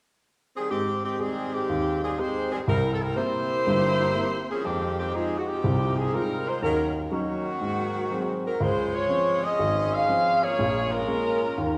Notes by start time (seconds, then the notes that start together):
0.56 D#3 G3 C4 G#4
0.71 G#2 D#3 G#3 C4 G4
1.05 D#3 G#3 C4 G4
1.19 D#3 G3 G#3 C4 G4 G#4
1.53 D#3 G#3 C4 G4
1.69 D#2
2.03 D#3 G3 C4 G#4
2.18 G#3 C4 D#4 G4 C5
2.52 D#3 G3 C4 G#4
2.67 C2 G3 C4 E4 A#4
2.93 A4
3.01 G3 C4 E4 A#4
3.16 A#3 C4 E4 G4 C5
3.67 G1 G2
4.15 A#3 C4 E4
4.50 F3 A#3 C#4 G#4
4.64 F2 D#3 G#3 C4 G4
4.98 D#3 G#3 C4 G4
5.14 F3 G#3 C4 D#4 F4 G#4
5.38 F#4
5.47 F3 C4 D#4 G4
5.64 C2 C3
5.97 F3 C4 D#4 G#4
6.13 G3 G#3 C4 D#4 F4 A#4
6.47 G#3 D#4 F4 C5
6.62 D#2 F#3 C#4 D#4 A#4
7.11 D#3 F#3 A#3 C#4 D#4 F#4
7.61 G#2
8.11 F#3 G#3 C4
8.46 F#3 C4 D#4 A#4
8.60 C#2 G#3 C#4 F4 C5
8.94 G#3 F4 C5 C#5
9.09 F3 C4 C#4
9.43 C#4 G#4 C5 D#5
9.59 G#1
9.93 C#4 G#4 C5 F5
10.09 F3 C4 C#4
10.43 A#3 F4 G#4 C#5
10.59 A#1 A#2
10.92 G#3 C#4 F4 A#4
11.08 G#3 A#3 C#4
11.58 D#2